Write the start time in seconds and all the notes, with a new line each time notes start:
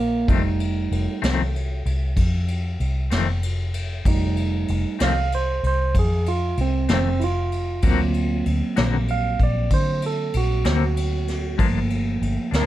Already playing: A#1 A#3
0.28 F1 F2 D#3 G3 A3 C4 D#4, kick, ride
0.60 ride
0.91 F1, ride
1.22 C2 F2 D#3 A3 C4, snare, ride
1.56 ride
1.85 C2, ride
2.17 F2, kick, ride
2.48 ride
2.80 C2, ride
3.10 F1 F2 D#3 A3 C4, snare, ride
3.43 ride
3.74 ride
4.05 F1 G3 A3 D#4, kick, ride
4.37 ride
4.68 F1, ride
4.99 C2 F2 D#3 A3 C4 F5, snare, ride
5.32 C5, ride
5.63 C2 C5, ride
5.94 F2, kick, ride
5.99 G#4
6.26 F4, ride
6.57 C2 C4, ride
6.88 F1 F2 D#3 A3 C4, snare, ride
6.93 C4
7.20 E4 F4, ride
7.52 ride
7.82 D2 D3 F#3 A#3 C4 F#4, kick, ride
8.14 ride
8.46 D2, ride
8.76 A#1 D3 A#3 C4 F#4, snare, ride
9.08 F5, ride
9.40 A#1 D5, kick, ride
9.70 D3 C5, kick, ride
10.02 ride
10.06 A4
10.34 A#1 F#4, ride
10.65 D2 D3 A#3 C4 F#4, snare, ride
10.97 ride
11.28 snare, ride
11.58 G1 G2 F3 A3 A#3 D4, kick, ride
11.90 ride
12.21 G1, ride
12.51 D2 G2 F3 A#3 D4, snare, ride
12.56 A#4